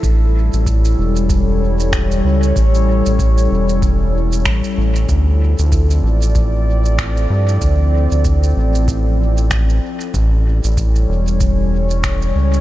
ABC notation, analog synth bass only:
X:1
M:4/4
L:1/16
Q:"Swing 16ths" 1/4=95
K:Dm
V:1 name="Analog synth bass" clef=bass
A,,,3 A,,,3 E,,,8 ^C,,2 | A,,,3 A,,,3 E,,,6 A,,, z A,,,2 | D,,3 D,,3 A,,,8 G,,2 | D,,3 D,,3 A,,,8 z2 |
A,,,3 A,,,3 E,,,8 ^C,,2 |]